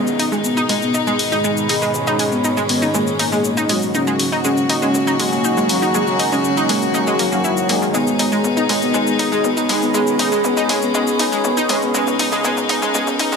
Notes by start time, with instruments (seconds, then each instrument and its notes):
Already playing: synth drone G#2 D#3, string section B2 D#3 G#3 D#4, soft synth lead B3, ambient pad C#4 G#4
0.07 shaker
0.19 synth arpeggio sound D#4, open hi-hat, shaker
0.32 synth arpeggio sound G#3, mid tom, shaker
0.44 soft synth lead B3, shaker
0.53 ambient pad D#5
0.57 synth arpeggio sound D#4, shaker
0.69 synth arpeggio sound G#3, open hi-hat, mid tom
0.76 ambient pad B5
0.82 soft synth lead B3, shaker
0.94 synth arpeggio sound D#4, mid tom, shaker
1.07 synth arpeggio sound G#3, shaker
1.19 open hi-hat, shaker
1.32 analog polysynth G#3 D#4 G#4, soft synth lead G#3, synth arpeggio sound D#4, mid tom, shaker
1.44 synth arpeggio sound G#3, shaker
1.57 shaker
1.69 analog polysynth G#3 D#4 G#4, synth arpeggio sound D#4, open hi-hat, shaker
1.82 synth arpeggio sound G#3, shaker
1.94 string section C#4, mid tom, shaker
2.07 synth arpeggio sound D#4, shaker
2.19 synth arpeggio sound G#3, open hi-hat, shaker
2.32 soft synth lead B3, mid tom, shaker
2.44 synth arpeggio sound D#4, shaker
2.57 synth arpeggio sound G#3, shaker
2.69 soft synth lead B3, open hi-hat, mid tom
2.82 synth arpeggio sound D#4, shaker
2.94 synth arpeggio sound G#3, soft synth lead A#3, mid tom, shaker
3.07 shaker
3.19 soft synth lead A#3, synth arpeggio sound D#4, open hi-hat, shaker
3.32 synth arpeggio sound G#3, analog polysynth G#3 D#4 G#4, shaker
3.44 shaker
3.57 synth arpeggio sound D#4, shaker
3.69 analog polysynth F#3 C#4 F#4, synth arpeggio sound G#3, open hi-hat, mid tom, shaker
3.82 shaker
3.94 string section C#3 F#3 A#3 F#4, soft synth lead C#4, synth arpeggio sound D#4, ambient pad F#4, mid tom, shaker
4.07 synth arpeggio sound G#3, shaker
4.19 ambient pad C#5, open hi-hat, shaker
4.32 synth arpeggio sound D#4, shaker
4.44 synth arpeggio sound G#3, soft synth lead C#4, shaker
4.57 ambient pad G#5, shaker
4.69 synth arpeggio sound D#4, open hi-hat, mid tom
4.82 synth arpeggio sound G#3, soft synth lead C#4, shaker
4.94 mid tom, shaker
5.07 synth arpeggio sound D#4, shaker
5.16 synth arpeggio sound G#3, ambient pad A#5, open hi-hat, shaker
5.32 analog polysynth F#3 C#4 F#4, soft synth lead A#3, mid tom, shaker
5.44 synth arpeggio sound D#4, shaker
5.57 synth arpeggio sound G#3, shaker
5.69 analog polysynth F#3 C#4 F#4, open hi-hat, mid tom, shaker
5.82 synth arpeggio sound D#4, shaker
5.94 synth arpeggio sound G#3, mid tom, shaker
6.07 shaker
6.19 synth arpeggio sound D#4, open hi-hat, shaker
6.32 synth arpeggio sound G#3, soft synth lead C#4, mid tom, shaker
6.44 shaker
6.57 synth arpeggio sound D#4, shaker
6.69 synth arpeggio sound G#3, soft synth lead A#3, open hi-hat, mid tom
6.82 shaker
6.94 soft synth lead G#3, synth arpeggio sound D#4, mid tom, shaker
7.07 synth arpeggio sound G#3, shaker
7.19 soft synth lead F#3, synth arpeggio sound A#3, open hi-hat, shaker
7.32 analog polysynth F#3 C#4 F#4, synth arpeggio sound A#3, shaker
7.44 synth arpeggio sound E4, shaker
7.57 shaker
7.69 analog polysynth G#3 D#4 G#4, synth arpeggio sound A#3, open hi-hat, mid tom, shaker
7.82 synth arpeggio sound D#3, shaker
7.94 string section B2 D#3 G#3 D#4, synth arpeggio sound G#3, soft synth lead B3, ambient pad G#4, mid tom, shaker
8.07 shaker
8.16 synth arpeggio sound D#4, ambient pad D#5, open hi-hat, mid tom, shaker
8.32 synth arpeggio sound G#3, shaker
8.44 soft synth lead B3, mid tom, shaker
8.57 synth arpeggio sound D#4, shaker
8.69 synth arpeggio sound G#3, open hi-hat, mid tom
8.82 soft synth lead B3, shaker
8.94 synth arpeggio sound G#3, soft synth lead B3, mid tom, shaker
9.07 shaker
9.19 synth arpeggio sound D#4, open hi-hat, mid tom, shaker
9.27 ambient pad B5
9.32 synth arpeggio sound G#3, analog polysynth G#3 D#4 G#4, shaker
9.44 soft synth lead B3, mid tom, shaker
9.57 synth arpeggio sound D#4, shaker
9.69 synth arpeggio sound G#3, analog polysynth G#3 D#4 G#4, open hi-hat, mid tom, shaker
9.82 soft synth lead B3, shaker
9.94 synth arpeggio sound G#3, soft synth lead B3, string section C#4, mid tom, shaker
10.07 shaker
10.19 synth arpeggio sound D#4, open hi-hat, mid tom, shaker
10.32 synth arpeggio sound G#3, shaker
10.44 soft synth lead B3, mid tom, shaker
10.57 synth arpeggio sound D#4, shaker
10.69 synth arpeggio sound G#3, open hi-hat, mid tom
10.82 soft synth lead B3, shaker
10.94 synth arpeggio sound G#3, soft synth lead B3, mid tom, shaker
11.07 shaker
11.19 synth arpeggio sound D#4, open hi-hat, mid tom, shaker
11.32 analog polysynth G#3 D#4 G#4, synth arpeggio sound G#3, shaker
11.44 soft synth lead B3, mid tom, shaker
11.57 synth arpeggio sound D#4, shaker
11.69 analog polysynth C#3 G#3 C#4, synth arpeggio sound G#3, open hi-hat, mid tom, shaker
11.82 soft synth lead B3, shaker
11.94 string section C#3 G#3 D#4, synth arpeggio sound G#3, soft synth lead B3, ambient pad C#4, mid tom, shaker
12.07 mid tom, shaker
12.19 synth arpeggio sound D#4, open hi-hat, mid tom, shaker
12.32 synth arpeggio sound G#3, mid tom, shaker
12.44 synth arpeggio sound G#3, soft synth lead B3, mid tom, shaker
12.57 mid tom, shaker
12.69 synth arpeggio sound D#4, open hi-hat, mid tom
12.82 synth arpeggio sound G#3, mid tom, shaker
12.94 synth arpeggio sound G#3, soft synth lead B3, mid tom, shaker
13.07 ambient pad E6, mid tom, shaker
13.19 synth arpeggio sound D#4, open hi-hat, mid tom, shaker
13.32 analog polysynth C#3 G#3 C#4, synth arpeggio sound G#3, mid tom, shaker